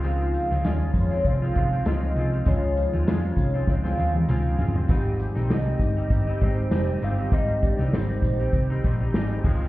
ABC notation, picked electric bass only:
X:1
M:4/4
L:1/16
Q:"Swing 16ths" 1/4=99
K:Ablyd
V:1 name="Picked electric bass" clef=bass
_D,,3 D,, E,,2 F,,2 C,,2 C,,2 D,,2 C,,2 | _D,,3 E,, F,,2 C,,2 D,,2 E,,2 D,,2 G,,, z | A,,,3 B,,, C,,2 G,,,2 G,,,2 A,,,2 F,,,2 G,,,2 | A,,,3 C,, A,,,2 B,,,2 C,,2 B,,,2 A,,,2 _D,,2 |]